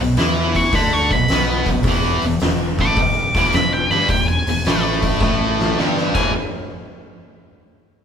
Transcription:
0.00 0.16 B1 medium
0.00 0.14 B2 medium
0.17 0.69 E2 medium
0.17 0.73 E3 medium
0.17 0.73 E4 medium
0.17 snare loud
0.17 open hi-hat medium
0.55 0.75 C#6 medium
0.55 kick medium
0.55 open hi-hat medium
0.72 1.08 D2 loud
0.72 1.11 D3 medium
0.72 1.11 D4 loud
0.72 0.93 B5 loud
0.72 kick loud
0.72 open hi-hat medium
0.93 1.11 C#6 medium
1.11 1.28 B1 medium
1.11 1.27 B2 medium
1.11 1.42 B5 medium
1.11 kick medium
1.11 open hi-hat medium
1.28 1.64 B1 medium
1.28 1.67 B2 medium
1.28 1.67 B3 loud
1.28 snare loud
1.28 open hi-hat medium
1.66 1.83 B1 medium
1.66 kick medium
1.66 open hi-hat medium
1.70 1.83 B2 medium
1.83 2.20 E1 medium
1.83 kick loud
1.83 open hi-hat medium
1.87 2.23 E2 medium
1.87 2.23 E3 loud
2.22 2.40 E1 medium
2.22 2.39 E2 medium
2.22 open hi-hat soft
2.40 2.76 E1 medium
2.40 2.72 E2 medium
2.40 snare loud
2.40 open hi-hat medium
2.79 2.96 A1 medium
2.79 2.97 A2 medium
2.79 2.98 A3 loud
2.79 3.52 D6 loud
2.79 kick medium
2.79 open hi-hat medium
2.97 3.32 E1 medium
2.97 3.28 E2 medium
2.97 kick loud
2.97 open hi-hat medium
3.35 3.51 E1 medium
3.35 3.53 E2 medium
3.35 3.54 E3 loud
3.35 kick medium
3.35 open hi-hat medium
3.52 3.88 E1 medium
3.52 3.84 E2 medium
3.52 3.72 B5 medium
3.52 snare loud
3.52 open hi-hat medium
3.73 3.90 G5 medium
3.90 4.07 G1 medium
3.90 4.09 G2 medium
3.90 4.10 G3 medium
3.90 4.09 B5 medium
3.90 open hi-hat soft
4.09 4.44 E1 medium
4.09 4.41 E2 medium
4.09 4.27 G5 loud
4.09 kick loud
4.09 open hi-hat medium
4.28 4.82 G#5 medium
4.45 4.63 E1 medium
4.45 4.63 E2 medium
4.45 open hi-hat medium
4.64 5.17 A1 medium
4.64 5.21 A2 medium
4.64 5.22 A3 medium
4.64 snare loud
4.64 open hi-hat medium
5.02 kick medium
5.02 open hi-hat medium
5.21 5.73 A1 medium
5.21 5.77 A2 medium
5.21 5.78 A3 loud
5.21 kick loud
5.21 snare medium
5.60 snare medium
5.78 6.13 G1 medium
5.78 6.15 G2 loud
5.78 6.15 G3 loud
5.78 snare medium
5.97 snare medium
6.15 6.32 E1 medium
6.15 6.30 E2 medium
6.15 6.30 B2 medium
6.15 6.31 E3 loud
6.15 6.32 G#5 medium
6.15 kick loud
6.15 crash medium

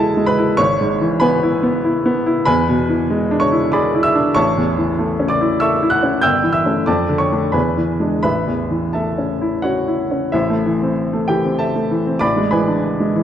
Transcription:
0.00 0.55 E2 medium
0.00 0.61 B2 soft
0.00 0.61 E3 soft
0.00 0.17 G#3 soft
0.00 0.38 E4 soft
0.00 0.61 F#4 medium
0.00 0.61 G#4 soft
0.00 0.26 A4 soft
0.00 0.27 B4 medium
0.00 0.62 F#5 medium
0.00 0.62 G#5 medium
0.00 0.27 A5 medium
0.17 0.51 G#3 soft
0.26 0.57 B4 medium
0.26 0.58 B5 medium
0.38 0.59 E4 soft
0.57 2.43 G#1 medium
0.57 1.18 C#5 medium
0.57 1.21 C#6 medium
0.81 1.14 G#2 soft
1.01 1.35 E3 soft
1.20 1.55 B3 medium
1.20 2.11 B4 medium
1.20 2.11 G#5 medium
1.20 2.14 B5 medium
1.43 1.76 E4 soft
1.63 1.97 B3 soft
1.84 2.18 E4 soft
2.06 2.39 B3 medium
2.26 2.47 E4 medium
2.45 4.32 E2 medium
2.45 3.37 B4 medium
2.45 3.36 G#5 medium
2.45 3.40 B5 medium
2.69 3.02 B2 soft
2.89 3.22 E3 soft
3.10 3.43 G#3 soft
3.31 3.65 D4 medium
3.40 3.71 C#5 medium
3.40 3.72 C#6 medium
3.52 3.86 E4 soft
3.72 4.07 G#4 soft
3.72 4.03 D5 medium
3.72 4.02 B5 medium
3.72 4.04 D6 medium
3.95 4.28 E4 soft
4.03 4.34 E5 medium
4.03 4.36 E6 medium
4.15 4.36 D4 soft
4.35 6.20 A1 medium
4.35 5.27 C#5 medium
4.35 5.27 A5 medium
4.35 5.30 C#6 medium
4.57 4.91 E2 soft
4.78 5.12 E3 soft
4.99 5.33 A3 soft
5.20 5.53 C#4 soft
5.28 5.59 D5 medium
5.28 5.61 D6 medium
5.41 5.74 E4 soft
5.60 5.95 A4 soft
5.60 5.90 E5 medium
5.60 5.90 C#6 soft
5.60 5.92 E6 medium
5.83 6.16 E4 soft
5.90 6.21 F#5 medium
5.90 6.23 F#6 medium
6.03 6.24 C#4 soft
6.21 6.86 G1 medium
6.21 6.53 G5 medium
6.21 6.51 E6 medium
6.21 6.54 G6 medium
6.44 6.78 E3 soft
6.53 6.85 E5 soft
6.53 6.86 E6 medium
6.66 6.85 A3 soft
6.66 6.86 C#4 soft
6.86 7.52 F2 medium
6.86 7.18 D5 medium
6.86 7.18 A5 medium
6.86 7.20 D6 medium
7.09 7.45 D3 soft
7.18 7.51 C#5 soft
7.18 7.53 C#6 medium
7.32 7.52 A3 soft
7.32 7.52 D4 soft
7.52 8.21 E2 soft
7.52 8.19 B4 soft
7.52 8.19 G#5 soft
7.52 8.21 B5 medium
7.77 8.14 E3 soft
8.00 8.21 G#3 soft
8.00 8.22 D4 soft
8.23 10.30 A1 soft
8.23 8.91 B4 soft
8.23 8.91 E5 soft
8.23 8.94 B5 medium
8.47 8.85 E2 soft
8.71 9.09 E3 soft
8.93 9.32 A3 soft
8.93 9.60 A4 soft
8.93 9.60 E5 soft
8.93 9.64 A5 soft
9.18 9.55 C#4 soft
9.42 9.79 E4 soft
9.62 10.02 C#4 soft
9.62 10.29 F#4 soft
9.62 10.29 C#5 soft
9.62 10.32 F#5 medium
9.88 10.25 E4 soft
10.11 10.34 C#4 soft
10.32 12.18 A1 medium
10.32 11.25 E4 soft
10.32 11.25 C5 soft
10.32 11.29 E5 medium
10.50 10.76 A3 soft
10.66 10.91 E3 soft
10.82 11.32 C4 soft
11.13 11.38 A3 soft
11.28 11.54 E3 soft
11.28 11.58 G4 soft
11.28 11.59 G5 medium
11.45 11.94 C4 soft
11.59 12.17 A4 soft
11.59 12.17 E5 soft
11.59 12.21 A5 medium
11.76 12.00 A3 soft
11.91 12.15 E3 soft
12.06 12.22 C4 soft
12.19 13.23 A1 medium
12.19 12.50 D5 medium
12.19 12.49 B5 medium
12.19 12.51 D6 medium
12.37 12.62 G#3 soft
12.51 12.78 E3 soft
12.51 13.11 B4 soft
12.51 13.11 G#5 soft
12.51 13.14 B5 medium
12.68 13.18 D4 soft
13.00 13.23 G#3 soft
13.16 13.23 E3 soft

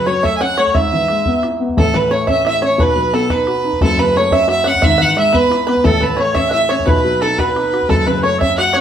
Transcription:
0.00 0.71 F#2 medium
0.06 0.23 F#3 medium
0.06 0.23 C#5 medium
0.06 0.24 C#5 medium
0.06 0.27 C#5 medium
0.23 0.40 A3 medium
0.23 0.39 E5 medium
0.23 0.41 E5 medium
0.23 0.36 E5 medium
0.23 bodhran medium
0.37 0.57 C#4 medium
0.37 0.58 F#5 medium
0.37 0.43 G#5 medium
0.37 bodhran medium
0.41 0.57 F#5 medium
0.41 0.60 F#5 medium
0.57 0.74 A3 medium
0.57 0.75 C#5 medium
0.57 0.73 C#5 medium
0.57 0.77 C#5 medium
0.57 bodhran soft
0.67 bodhran soft
0.74 1.74 G#2 medium
0.74 1.39 E5 medium
0.74 1.43 E5 medium
0.74 bodhran medium
0.92 1.08 E3 medium
1.08 1.25 G#3 medium
1.08 bodhran medium
1.26 1.43 B3 medium
1.26 bodhran medium
1.43 1.60 E4 medium
1.43 bodhran medium
1.60 1.76 B3 medium
1.69 bodhran soft
1.77 2.75 A1 medium
1.77 2.76 A2 medium
1.77 1.93 A4 medium
1.77 1.97 A4 medium
1.77 bodhran medium
1.93 2.10 E3 soft
1.93 2.11 B4 medium
1.93 2.13 B4 medium
1.93 bodhran soft
2.10 2.27 A3 medium
2.10 2.27 C#5 medium
2.10 2.28 C#5 medium
2.27 2.44 C#4 medium
2.27 2.43 E5 medium
2.27 2.44 E5 medium
2.27 bodhran medium
2.45 2.61 E4 medium
2.45 2.61 E5 medium
2.45 2.62 E5 medium
2.45 bodhran medium
2.61 2.78 C#4 medium
2.61 2.78 C#5 medium
2.61 2.84 C#5 medium
2.61 bodhran medium
2.78 3.77 B1 medium
2.78 3.77 B2 medium
2.78 3.11 B4 medium
2.78 bodhran medium
2.82 3.16 B4 medium
2.96 3.12 F#3 medium
2.96 bodhran soft
3.13 3.29 B3 medium
3.13 3.30 A4 medium
3.13 3.33 A4 medium
3.30 3.47 D#4 medium
3.30 3.77 B4 medium
3.30 3.82 B4 medium
3.30 bodhran medium
3.47 3.63 F#4 medium
3.47 bodhran medium
3.64 3.80 D#4 medium
3.73 bodhran soft
3.81 4.79 F#1 medium
3.81 4.80 F#2 medium
3.81 3.99 A4 medium
3.81 4.01 A4 loud
3.81 bodhran medium
3.97 4.15 C#3 medium
3.97 4.14 B4 medium
3.97 4.18 B4 medium
3.97 bodhran soft
4.15 4.31 A3 medium
4.15 4.35 C#5 loud
4.15 4.32 C#5 medium
4.31 4.48 C#4 medium
4.31 4.47 E5 medium
4.31 4.49 E5 loud
4.31 bodhran medium
4.48 4.65 F#4 medium
4.48 4.64 E5 medium
4.48 4.68 E5 loud
4.48 bodhran medium
4.64 4.82 C#4 medium
4.64 4.81 F#5 medium
4.64 4.86 F#5 loud
4.64 bodhran medium
4.75 bodhran soft
4.82 5.81 G#1 medium
4.82 5.82 G#2 medium
4.82 4.98 E5 medium
4.82 5.03 E5 loud
4.82 bodhran medium
4.98 5.17 E3 medium
4.98 5.15 F#5 medium
4.98 5.18 F#5 loud
4.98 bodhran soft
5.16 5.33 G#3 medium
5.16 5.33 E5 medium
5.16 5.36 E5 medium
5.16 bodhran medium
5.33 5.50 B3 medium
5.33 5.65 B4 medium
5.33 5.68 B4 loud
5.33 bodhran medium
5.50 5.67 E4 medium
5.50 bodhran medium
5.67 5.84 B3 medium
5.67 5.83 B4 medium
5.67 5.86 B4 medium
5.67 bodhran medium
5.77 bodhran soft
5.84 6.82 A1 medium
5.84 6.83 A2 medium
5.84 6.00 A4 medium
5.84 6.04 A4 loud
5.84 6.19 A4 medium
5.84 bodhran medium
6.01 6.18 E3 medium
6.01 6.17 B4 medium
6.01 6.22 B4 medium
6.01 bodhran soft
6.17 6.35 A3 medium
6.17 6.33 C#5 medium
6.17 6.36 C#5 medium
6.35 6.52 C#4 medium
6.35 6.50 E5 medium
6.35 6.52 E5 loud
6.35 6.49 E5 medium
6.35 bodhran medium
6.49 6.68 E5 medium
6.49 6.71 E5 medium
6.49 6.53 F#5 medium
6.53 6.70 E4 medium
6.53 6.70 E5 medium
6.69 6.87 C#4 medium
6.69 6.85 C#5 medium
6.69 6.88 C#5 medium
6.69 6.87 C#5 medium
6.69 bodhran medium
6.80 bodhran soft
6.86 7.85 B1 medium
6.86 7.86 B2 medium
6.86 7.18 B4 medium
6.86 7.23 B4 loud
6.86 7.21 B4 medium
6.86 bodhran medium
7.04 7.20 F#3 medium
7.21 7.38 D#4 medium
7.21 7.38 A4 medium
7.21 7.37 A4 medium
7.21 7.39 A4 medium
7.38 7.54 F#4 medium
7.38 7.91 B4 medium
7.38 7.89 B4 medium
7.38 bodhran medium
7.56 7.72 D#4 medium
7.56 bodhran medium
7.73 7.89 F#4 medium
7.73 bodhran medium
7.82 bodhran soft
7.89 8.81 F#1 medium
7.89 8.81 F#2 medium
7.89 8.09 A4 medium
7.89 8.06 A4 medium
7.89 8.05 A4 medium
7.89 bodhran medium
8.06 8.23 C#3 medium
8.06 8.23 B4 medium
8.06 8.22 B4 medium
8.06 8.24 B4 medium
8.06 bodhran soft
8.23 8.39 A3 medium
8.23 8.39 C#5 medium
8.23 8.38 C#5 medium
8.23 8.41 C#5 medium
8.38 8.57 C#4 medium
8.38 8.57 E5 medium
8.38 8.56 E5 medium
8.38 bodhran medium
8.57 8.74 F#4 medium
8.57 8.76 F#5 medium
8.57 8.73 F#5 medium
8.57 8.75 F#5 medium
8.57 bodhran medium
8.73 8.81 C#4 medium
8.73 8.81 C#5 medium
8.73 bodhran medium

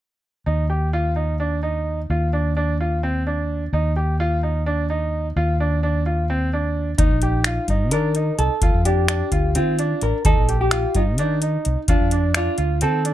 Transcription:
0.46 2.06 D#2 medium
0.46 0.64 D#4 medium
0.70 0.87 G4 medium
0.93 1.11 F4 medium
1.16 1.34 D#4 medium
1.40 1.57 D4 medium
1.63 1.98 D#4 medium
2.10 3.70 D#2 medium
2.10 2.28 F4 medium
2.33 2.51 D4 medium
2.57 2.74 D4 medium
2.81 2.98 F4 medium
3.03 3.21 C4 medium
3.27 3.62 D4 medium
3.73 5.33 D#2 medium
3.73 3.91 D#4 medium
3.96 4.14 G4 medium
4.20 4.38 F4 medium
4.43 4.61 D#4 medium
4.66 4.84 D4 medium
4.90 5.25 D#4 medium
5.36 6.96 D#2 medium
5.36 5.54 F4 medium
5.60 5.78 D4 medium
5.83 6.01 D4 medium
6.06 6.24 F4 medium
6.30 6.47 C4 medium
6.53 6.89 D4 medium
6.98 7.08 D#2 medium
6.98 7.95 D#4 medium
6.98 7.17 D#4 medium
6.98 kick medium
6.98 closed hi-hat medium
7.11 7.58 A#1 medium
7.22 7.40 G4 medium
7.22 closed hi-hat soft
7.44 7.64 F4 medium
7.44 finger snap medium
7.44 closed hi-hat medium
7.68 7.92 G2 medium
7.68 7.87 D#4 medium
7.68 kick medium
7.68 closed hi-hat soft
7.91 8.30 D#3 medium
7.91 8.11 D4 medium
7.91 8.38 A#4 medium
7.91 closed hi-hat medium
8.15 8.51 D#4 medium
8.15 closed hi-hat soft
8.39 8.48 C2 medium
8.39 8.85 A4 medium
8.39 closed hi-hat soft
8.62 8.71 D#2 medium
8.62 8.80 F4 medium
8.62 kick medium
8.62 closed hi-hat medium
8.74 9.21 F2 medium
8.85 9.03 D4 medium
8.85 9.58 G4 medium
8.85 closed hi-hat medium
9.08 9.27 D4 medium
9.08 finger snap medium
9.08 closed hi-hat medium
9.32 9.57 D2 medium
9.32 9.50 F4 medium
9.32 kick medium
9.32 closed hi-hat medium
9.55 9.93 D#3 medium
9.55 9.73 C4 medium
9.55 10.04 F4 medium
9.55 closed hi-hat medium
9.79 10.14 D4 medium
9.79 closed hi-hat soft
10.01 10.12 A1 medium
10.01 10.25 A#4 medium
10.01 closed hi-hat soft
10.25 10.35 D#2 medium
10.25 10.43 D#4 medium
10.25 10.60 A4 medium
10.25 kick medium
10.25 closed hi-hat medium
10.38 10.84 A#1 medium
10.49 10.67 G4 medium
10.49 closed hi-hat soft
10.61 10.97 G4 medium
10.71 10.90 F4 medium
10.71 finger snap medium
10.71 closed hi-hat medium
10.95 11.19 G2 medium
10.95 11.14 D#4 medium
10.95 11.02 F4 medium
10.95 kick medium
10.95 closed hi-hat soft
11.18 11.56 D#3 medium
11.18 11.37 D4 medium
11.18 11.85 D#4 medium
11.18 closed hi-hat medium
11.42 11.78 D#4 medium
11.42 closed hi-hat soft
11.65 11.75 C2 medium
11.65 closed hi-hat soft
11.88 11.98 D#2 medium
11.88 12.37 D4 medium
11.88 12.07 F4 medium
11.88 kick medium
11.88 closed hi-hat medium
12.01 12.47 F2 medium
12.11 12.30 D4 medium
12.11 closed hi-hat soft
12.34 12.53 D4 medium
12.34 12.84 F4 medium
12.34 finger snap medium
12.34 closed hi-hat medium
12.58 12.84 D2 medium
12.58 12.76 F4 medium
12.58 closed hi-hat soft
12.81 13.14 D#3 medium
12.81 13.00 C4 medium
12.81 13.14 A4 medium
12.81 closed hi-hat medium
13.05 13.14 D4 medium
13.05 closed hi-hat medium

